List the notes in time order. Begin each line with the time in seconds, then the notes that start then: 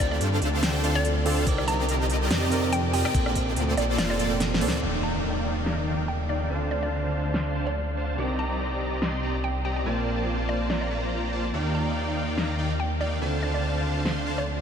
Already playing: D2 D3 C4 D4 F4 A4 C5 F5
0.11 D5
0.21 G2, closed hi-hat
0.42 D2, closed hi-hat
0.63 D3 D4 A4 C5 G5, snare, closed hi-hat
0.83 D3 C4 D4 F4 A4 C5 D5 F5, closed hi-hat
0.95 D5
1.05 closed hi-hat
1.25 D3 C4 D4 F4 A4 C5 D5 F5, open hi-hat
1.45 C2 C3 C4 D#4 G4 A#4 D5 D#5, kick, closed hi-hat, crash
1.49 D6
1.58 cross-stick
1.68 A#5, closed hi-hat
1.89 closed hi-hat
2.10 closed hi-hat
2.31 F2 C4 G4 A#4 D5 D#5, snare, closed hi-hat
2.50 C3 C4 D#4 G4 A#4 D5 D#5, closed hi-hat
2.73 G5, closed hi-hat
2.93 C4 G4 A#4 D5 D#5 G5, open hi-hat
3.05 G5, cross-stick
3.13 A#1 A#2 A#3 C4 F4 A4 C5 D5, kick, closed hi-hat, crash
3.26 cross-stick
3.35 kick, closed hi-hat
3.56 D2, closed hi-hat
3.77 A#1 D5, closed hi-hat
3.98 F1 A#3 F4 A4 C5 D5 F5, snare, closed hi-hat
4.10 D5
4.18 A#2 A#3 C4 F4 A4 C5 D5, closed hi-hat
4.40 snare, closed hi-hat
4.54 snare
4.60 D2 A#2 A#3 C4 F4 A4 C5 D5, open hi-hat
4.68 snare
4.80 D#2 D#3 A#3 D#4 F4 G4 D5 F5 G5, crash, impact
4.84 D5
5.03 A#5
5.66 D#3 D#4 D5 F5 A#5, snare
5.87 D#3 D#4 D5 F5 G5
6.08 G5
6.29 D#3 D#4 D5 F5 G5
6.48 D2 D3 C4 D4 F4 A4 C5 D5 F5 A5
6.71 D5
6.83 D5
7.34 D3 D4 C5 F5 C6, snare
7.55 D3 D4 C5 F5 A5
7.67 D5
7.97 D3 D4 C5 F5 A5
8.16 C2 C3 C4 D#4 G4 A#4 D5 D#5 A#5
8.20 D6
8.39 A#5
9.02 C4 G4 D5 D#5 C6, snare
9.23 C4 G4 D5 D#5 A#5
9.44 G5
9.65 C4 G4 D5 D#5 G5 A#5
9.76 G5
9.84 A#1 A#2 A#3 C4 F4 A#4 C5 D5 A5
9.88 D5
10.49 D5
10.70 A#3 F4 C5 D5 A#5, snare
10.81 D5
10.91 A#3 F4 C5 D5 A#5
11.33 A#3 F4 C5 D5 A5
11.52 D#2 D#3 A#3 D#4 F4 G4 D5 F5 G5
11.75 A#5
12.38 D#3 D#4 D5 F5 A#5, snare
12.59 D#3 D#4 D5 F5 G5
12.80 G5
13.01 D#3 D#4 D5 F5 G5
13.20 D2 D3 C4 D4 F4 A4 C5 D5 F5 A5
13.43 D5
13.54 D5
14.05 D3 D4 C5 F5 C6, snare
14.26 D3 D4 C5 F5 A5
14.38 D5